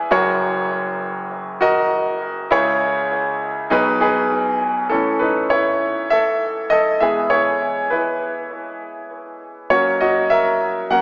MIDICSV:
0, 0, Header, 1, 2, 480
1, 0, Start_track
1, 0, Tempo, 599520
1, 94, Time_signature, 4, 2, 24, 8
1, 8820, End_track
2, 0, Start_track
2, 0, Title_t, "Grand piano"
2, 0, Program_c, 0, 0
2, 0, Control_c, 0, 64, 127
2, 0, Note_on_c, 0, 64, 86
2, 0, Note_on_c, 0, 68, 81
2, 0, Note_on_c, 0, 71, 92
2, 86, Note_on_c, 0, 66, 82
2, 90, Note_on_c, 0, 70, 71
2, 92, Note_on_c, 0, 30, 73
2, 92, Note_on_c, 0, 42, 75
2, 95, Note_on_c, 0, 73, 91
2, 105, Control_c, 0, 64, 0
2, 106, Note_off_c, 0, 71, 0
2, 109, Note_off_c, 0, 64, 0
2, 111, Note_off_c, 0, 68, 0
2, 240, Control_c, 0, 64, 127
2, 819, Note_off_c, 0, 66, 0
2, 820, Note_off_c, 0, 70, 0
2, 823, Note_off_c, 0, 73, 0
2, 1286, Note_on_c, 0, 66, 80
2, 1294, Note_on_c, 0, 70, 78
2, 1296, Note_on_c, 0, 75, 91
2, 1836, Note_off_c, 0, 66, 0
2, 1840, Note_off_c, 0, 70, 0
2, 1841, Note_off_c, 0, 75, 0
2, 1981, Note_off_c, 0, 30, 0
2, 1981, Note_off_c, 0, 42, 0
2, 2006, Note_on_c, 0, 64, 81
2, 2014, Note_on_c, 0, 49, 69
2, 2014, Note_on_c, 0, 68, 75
2, 2015, Note_on_c, 0, 37, 68
2, 2017, Note_on_c, 0, 73, 93
2, 2025, Control_c, 0, 64, 0
2, 2149, Control_c, 0, 64, 127
2, 2739, Note_off_c, 0, 64, 0
2, 2743, Note_off_c, 0, 68, 0
2, 2744, Note_off_c, 0, 73, 0
2, 2942, Note_off_c, 0, 49, 0
2, 2943, Note_off_c, 0, 37, 0
2, 2964, Note_on_c, 0, 63, 86
2, 2969, Note_on_c, 0, 68, 73
2, 2970, Note_on_c, 0, 47, 72
2, 2971, Note_on_c, 0, 35, 72
2, 2977, Note_on_c, 0, 71, 99
2, 2984, Control_c, 0, 64, 0
2, 3127, Control_c, 0, 64, 127
2, 3161, Note_off_c, 0, 63, 0
2, 3163, Note_off_c, 0, 68, 0
2, 3168, Note_off_c, 0, 71, 0
2, 3204, Note_on_c, 0, 63, 79
2, 3212, Note_on_c, 0, 68, 76
2, 3216, Note_on_c, 0, 71, 89
2, 3755, Note_off_c, 0, 63, 0
2, 3759, Note_off_c, 0, 68, 0
2, 3762, Note_off_c, 0, 71, 0
2, 3900, Note_off_c, 0, 47, 0
2, 3901, Note_off_c, 0, 35, 0
2, 3919, Note_on_c, 0, 69, 77
2, 3926, Note_on_c, 0, 45, 47
2, 3933, Note_on_c, 0, 52, 43
2, 3937, Note_on_c, 0, 61, 60
2, 3944, Control_c, 0, 64, 0
2, 4086, Control_c, 0, 64, 127
2, 4158, Note_on_c, 0, 71, 71
2, 4159, Note_off_c, 0, 61, 0
2, 4174, Note_off_c, 0, 69, 0
2, 4179, Note_on_c, 0, 63, 54
2, 4249, Note_off_c, 0, 45, 0
2, 4252, Note_off_c, 0, 52, 0
2, 4400, Note_off_c, 0, 63, 0
2, 4404, Note_on_c, 0, 73, 81
2, 4414, Note_off_c, 0, 71, 0
2, 4423, Note_on_c, 0, 64, 65
2, 4866, Note_off_c, 0, 64, 0
2, 4887, Note_on_c, 0, 76, 93
2, 4904, Note_off_c, 0, 73, 0
2, 4904, Note_on_c, 0, 69, 66
2, 5347, Note_off_c, 0, 69, 0
2, 5364, Note_on_c, 0, 75, 92
2, 5383, Note_on_c, 0, 69, 69
2, 5385, Note_off_c, 0, 76, 0
2, 5602, Note_off_c, 0, 69, 0
2, 5608, Note_on_c, 0, 76, 83
2, 5612, Note_on_c, 0, 52, 50
2, 5617, Note_off_c, 0, 75, 0
2, 5617, Note_on_c, 0, 56, 43
2, 5622, Note_on_c, 0, 59, 52
2, 5624, Control_c, 0, 64, 0
2, 5625, Note_on_c, 0, 68, 68
2, 5772, Control_c, 0, 64, 127
2, 5843, Note_off_c, 0, 68, 0
2, 5844, Note_on_c, 0, 73, 84
2, 5859, Note_off_c, 0, 76, 0
2, 5863, Note_on_c, 0, 64, 62
2, 6301, Note_off_c, 0, 52, 0
2, 6304, Note_off_c, 0, 56, 0
2, 6307, Note_off_c, 0, 59, 0
2, 6307, Note_off_c, 0, 64, 0
2, 6327, Note_on_c, 0, 71, 66
2, 6342, Note_on_c, 0, 64, 53
2, 6344, Note_off_c, 0, 73, 0
2, 7259, Note_off_c, 0, 71, 0
2, 7267, Note_off_c, 0, 64, 0
2, 7768, Note_on_c, 0, 73, 85
2, 7769, Note_on_c, 0, 54, 52
2, 7773, Note_on_c, 0, 58, 44
2, 7778, Note_on_c, 0, 61, 55
2, 7782, Note_on_c, 0, 66, 59
2, 7786, Control_c, 0, 64, 0
2, 7933, Control_c, 0, 64, 127
2, 8002, Note_off_c, 0, 66, 0
2, 8011, Note_on_c, 0, 75, 76
2, 8019, Note_off_c, 0, 73, 0
2, 8019, Note_on_c, 0, 66, 64
2, 8091, Note_off_c, 0, 54, 0
2, 8094, Note_off_c, 0, 58, 0
2, 8096, Note_off_c, 0, 61, 0
2, 8241, Note_off_c, 0, 66, 0
2, 8246, Note_on_c, 0, 76, 86
2, 8256, Note_on_c, 0, 70, 65
2, 8261, Note_off_c, 0, 75, 0
2, 8704, Note_off_c, 0, 70, 0
2, 8731, Note_on_c, 0, 54, 44
2, 8731, Note_on_c, 0, 58, 42
2, 8731, Note_on_c, 0, 78, 94
2, 8737, Note_on_c, 0, 61, 49
2, 8737, Note_on_c, 0, 70, 74
2, 8746, Note_off_c, 0, 76, 0
2, 8820, Note_off_c, 0, 54, 0
2, 8820, Note_off_c, 0, 58, 0
2, 8820, Note_off_c, 0, 61, 0
2, 8820, Note_off_c, 0, 70, 0
2, 8820, Note_off_c, 0, 78, 0
2, 8820, End_track
0, 0, End_of_file